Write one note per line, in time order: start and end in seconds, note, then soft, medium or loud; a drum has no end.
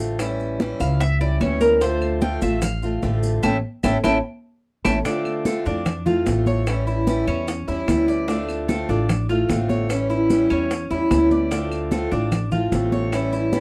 0.00 0.74 A1 medium
0.00 0.19 D3 medium
0.00 0.19 A3 medium
0.00 0.19 C4 medium
0.00 0.20 F4 medium
0.00 high conga soft
0.19 0.59 E3 medium
0.19 0.59 G3 medium
0.19 0.60 C#4 medium
0.19 0.60 E4 medium
0.19 high bongo medium
0.19 high conga soft
0.19 claves medium
0.19 maracas medium
0.40 high conga soft
0.40 maracas soft
0.60 0.79 E3 medium
0.60 0.80 G3 medium
0.60 0.80 C#4 medium
0.60 0.79 E4 medium
0.60 high bongo medium
0.60 high conga medium
0.60 maracas soft
0.80 1.37 C#2 loud
0.80 1.00 G3 soft
0.80 1.00 C#4 soft
0.80 1.00 E4 soft
0.80 1.00 F5 loud
0.80 high bongo soft
0.80 claves medium
0.80 maracas medium
1.00 1.20 E5 loud
1.00 muted steel-string acoustic guitar stroke medium
1.00 high bongo medium
1.00 high conga soft
1.00 maracas medium
1.21 1.40 G3 soft
1.21 1.41 C#4 soft
1.21 1.40 E4 medium
1.21 1.40 D5 medium
1.21 high bongo soft
1.21 high conga soft
1.21 maracas soft
1.41 2.36 D2 medium
1.41 1.81 E3 medium
1.41 1.81 G3 medium
1.41 1.81 C#4 medium
1.41 1.82 E4 medium
1.41 1.61 C#5 medium
1.41 high bongo soft
1.41 low bongo medium
1.41 high conga medium
1.41 claves medium
1.41 maracas soft
1.61 1.81 A#4 medium
1.61 high bongo soft
1.61 high conga medium
1.61 maracas medium
1.81 2.20 D3 medium
1.81 2.21 A3 medium
1.81 2.22 C4 medium
1.81 2.22 F4 medium
1.81 2.19 C5 medium
1.81 high bongo medium
1.81 maracas medium
2.01 high conga soft
2.01 claves medium
2.01 maracas soft
2.21 2.41 D3 medium
2.21 2.42 A3 medium
2.21 2.42 C4 medium
2.21 2.41 F4 medium
2.21 2.42 G5 loud
2.21 high bongo medium
2.21 high conga medium
2.21 maracas soft
2.41 2.99 A1 loud
2.41 2.62 A3 soft
2.41 2.62 C4 soft
2.41 2.62 F4 soft
2.41 2.62 E5 medium
2.41 high bongo soft
2.41 high conga loud
2.41 maracas medium
2.62 3.19 F5 medium
2.62 muted steel-string acoustic guitar stroke medium
2.62 high bongo medium
2.62 high conga soft
2.62 low conga medium
2.62 claves medium
2.62 maracas medium
2.82 3.02 A3 soft
2.82 3.03 C4 soft
2.82 3.02 F4 soft
2.82 high bongo soft
2.82 high conga soft
2.82 maracas soft
3.02 3.41 A1 medium
3.02 3.43 D3 medium
3.02 3.42 A3 medium
3.02 3.43 C4 medium
3.02 3.44 F4 medium
3.02 high bongo soft
3.02 low bongo medium
3.02 high conga soft
3.02 maracas soft
3.23 high bongo soft
3.23 high conga soft
3.23 maracas medium
3.43 3.58 A1 medium
3.43 3.57 A3 medium
3.43 3.57 C#4 medium
3.43 3.56 E4 medium
3.43 3.56 E5 medium
3.43 3.56 G5 medium
3.43 3.56 A5 loud
3.43 high bongo medium
3.43 high conga loud
3.43 claves medium
3.43 maracas loud
3.83 3.99 A1 medium
3.83 3.97 A3 medium
3.83 3.97 C#4 loud
3.83 3.97 E4 medium
3.83 3.97 E5 medium
3.83 3.97 G5 medium
3.83 3.97 A5 medium
3.83 high bongo loud
3.83 high conga loud
3.83 claves loud
3.83 maracas medium
4.04 4.19 A1 medium
4.04 4.17 A3 medium
4.04 4.17 C#4 medium
4.04 4.17 E4 medium
4.04 4.17 E5 medium
4.04 4.17 G5 medium
4.04 4.17 A5 medium
4.04 high bongo loud
4.04 high conga loud
4.04 claves medium
4.04 maracas medium
4.85 5.00 A1 medium
4.85 4.98 A3 medium
4.85 4.98 C#4 medium
4.85 4.98 E4 loud
4.85 4.98 E5 medium
4.85 4.98 G5 medium
4.85 4.98 A5 medium
4.85 high bongo medium
4.85 high conga loud
4.85 claves loud
4.85 maracas medium
5.05 5.44 D3 medium
5.05 5.45 A3 medium
5.05 5.45 C4 medium
5.05 5.44 D4 medium
5.05 5.46 F4 medium
5.05 high bongo medium
5.05 high conga soft
5.05 maracas medium
5.25 high conga soft
5.25 claves medium
5.25 maracas soft
5.45 5.65 D3 medium
5.45 5.65 A3 medium
5.45 5.66 C4 medium
5.45 5.64 F4 medium
5.45 5.65 A4 medium
5.45 high bongo medium
5.45 high conga medium
5.45 maracas medium
5.65 6.23 F2 medium
5.65 5.85 A3 soft
5.65 5.85 C4 soft
5.65 6.05 D4 medium
5.65 5.85 F4 soft
5.65 high conga soft
5.65 maracas soft
5.86 muted steel-string acoustic guitar stroke medium
5.86 high bongo medium
5.86 high conga soft
5.86 low conga medium
5.86 claves medium
5.86 maracas medium
6.06 6.25 A3 soft
6.06 6.26 C4 soft
6.06 6.25 F4 medium
6.06 6.46 F4 medium
6.06 high conga soft
6.06 low conga medium
6.06 maracas soft
6.26 7.22 A1 medium
6.26 6.66 D3 medium
6.26 6.66 A3 medium
6.26 6.67 C4 medium
6.26 6.67 F4 medium
6.26 high bongo medium
6.26 low bongo medium
6.26 high conga medium
6.26 maracas medium
6.46 6.86 C#5 medium
6.46 high conga medium
6.46 maracas soft
6.67 7.06 E3 medium
6.67 7.06 G3 medium
6.67 7.07 C#4 medium
6.67 7.07 E4 medium
6.67 high bongo medium
6.67 claves medium
6.67 maracas medium
6.87 7.26 E4 medium
6.87 high bongo soft
6.87 high conga soft
6.87 maracas soft
7.07 7.27 E3 medium
7.07 7.27 G3 medium
7.07 7.27 C#4 medium
7.07 7.26 E4 medium
7.07 high bongo medium
7.07 high conga loud
7.07 maracas medium
7.27 7.65 E2 loud
7.27 7.47 G3 soft
7.27 7.67 C#4 medium
7.27 7.47 C#4 soft
7.27 7.47 E4 soft
7.27 high conga soft
7.27 claves medium
7.27 maracas soft
7.47 muted steel-string acoustic guitar stroke medium
7.47 high bongo medium
7.47 high conga soft
7.47 maracas medium
7.68 7.87 E2 medium
7.68 7.88 G3 soft
7.68 7.88 C#4 soft
7.68 7.87 E4 medium
7.68 8.07 E4 medium
7.68 high bongo soft
7.68 high conga soft
7.68 maracas soft
7.88 8.83 D2 medium
7.88 8.28 E3 medium
7.88 8.28 G3 medium
7.88 8.28 C#4 medium
7.88 8.29 E4 medium
7.88 high bongo medium
7.88 low bongo medium
7.88 high conga medium
7.88 claves medium
7.88 maracas medium
8.08 8.28 D5 medium
8.08 high bongo soft
8.08 maracas soft
8.28 8.67 D3 medium
8.28 8.68 A3 medium
8.28 8.69 C4 medium
8.28 8.67 D4 medium
8.28 8.69 F4 medium
8.28 high bongo medium
8.28 high conga soft
8.28 maracas medium
8.49 high conga soft
8.49 claves medium
8.49 maracas soft
8.68 8.88 D3 medium
8.68 8.88 A3 medium
8.68 8.88 C4 medium
8.68 8.87 F4 medium
8.68 8.88 A4 medium
8.68 high bongo medium
8.68 high conga loud
8.68 maracas medium
8.89 9.46 A1 loud
8.89 9.08 A3 soft
8.89 9.08 C4 soft
8.89 9.28 D4 medium
8.89 9.08 F4 medium
8.89 high conga soft
8.89 maracas soft
9.09 muted steel-string acoustic guitar stroke medium
9.09 high bongo medium
9.09 high conga soft
9.09 low conga medium
9.09 claves medium
9.09 maracas medium
9.29 9.48 A3 soft
9.29 9.49 C4 soft
9.29 9.49 F4 soft
9.29 9.69 F4 medium
9.29 high conga soft
9.29 maracas soft
9.49 10.45 A1 medium
9.49 9.89 D3 medium
9.49 9.89 A3 medium
9.49 9.90 C4 medium
9.49 9.90 F4 medium
9.49 high bongo medium
9.49 low bongo medium
9.49 high conga medium
9.49 maracas medium
9.69 10.09 C#5 medium
9.69 high conga medium
9.69 maracas soft
9.89 10.28 E3 medium
9.89 10.29 G3 medium
9.89 10.30 C#4 medium
9.89 10.30 E4 medium
9.89 high bongo medium
9.89 high conga soft
9.89 claves medium
9.89 maracas medium
10.10 10.49 E4 medium
10.10 high bongo soft
10.10 high conga soft
10.10 maracas soft
10.30 10.49 E3 medium
10.30 10.50 G3 medium
10.30 10.50 C#4 medium
10.30 10.49 E4 medium
10.30 high bongo medium
10.30 high conga medium
10.30 maracas medium
10.50 10.88 E2 medium
10.50 10.70 G3 soft
10.50 10.90 C#4 medium
10.50 10.70 C#4 soft
10.50 10.70 E4 soft
10.50 high conga soft
10.50 claves medium
10.50 maracas soft
10.71 muted steel-string acoustic guitar stroke medium
10.71 high bongo medium
10.71 high conga soft
10.71 maracas medium
10.91 11.10 E2 medium
10.91 11.10 G3 soft
10.91 11.11 C#4 soft
10.91 11.30 E4 medium
10.91 11.10 E4 soft
10.91 high bongo soft
10.91 high conga soft
10.91 maracas soft
11.11 12.06 D2 medium
11.11 11.50 E3 medium
11.11 11.51 G3 medium
11.11 11.51 C#4 medium
11.11 11.52 E4 medium
11.11 high bongo medium
11.11 low bongo medium
11.11 high conga medium
11.11 claves medium
11.11 maracas medium
11.31 11.51 D5 medium
11.31 high bongo soft
11.31 high conga medium
11.31 maracas soft
11.51 11.90 D3 medium
11.51 11.91 A3 medium
11.51 11.91 C4 medium
11.51 11.90 D4 medium
11.51 11.92 F4 medium
11.51 high bongo medium
11.51 high conga soft
11.51 maracas medium
11.71 high conga soft
11.71 claves medium
11.71 maracas soft
11.91 12.11 D3 medium
11.91 12.11 A3 medium
11.91 12.12 C4 medium
11.91 12.10 F4 medium
11.91 12.11 A4 medium
11.91 high bongo medium
11.91 high conga medium
11.91 maracas medium
12.12 12.68 A1 loud
12.12 12.31 A3 soft
12.12 12.32 C4 soft
12.12 12.51 D4 medium
12.12 12.31 F4 soft
12.12 high conga soft
12.12 maracas soft
12.32 muted steel-string acoustic guitar stroke medium
12.32 high bongo medium
12.32 high conga soft
12.32 low conga medium
12.32 claves medium
12.32 maracas medium
12.52 12.72 A3 soft
12.52 12.72 C4 soft
12.52 12.71 F4 medium
12.52 12.91 F4 medium
12.52 high conga soft
12.52 low conga medium
12.52 maracas soft
12.72 13.60 A1 loud
12.72 13.12 D3 medium
12.72 13.12 A3 medium
12.72 13.12 C4 medium
12.72 13.13 F4 medium
12.72 high bongo medium
12.72 low bongo medium
12.72 high conga medium
12.72 maracas medium
12.92 13.31 C#5 medium
12.92 high conga medium
12.92 maracas soft
13.12 13.52 E3 medium
13.12 13.52 G3 medium
13.12 13.53 C#4 medium
13.12 13.53 E4 medium
13.12 high bongo medium
13.12 high conga soft
13.12 claves medium
13.12 maracas medium
13.33 13.60 E4 medium
13.33 high bongo soft
13.33 high conga soft
13.33 maracas soft
13.53 13.60 E3 medium
13.53 13.60 G3 medium
13.53 13.60 C#4 medium
13.53 13.60 E4 medium
13.53 high bongo medium
13.53 high conga medium
13.53 maracas medium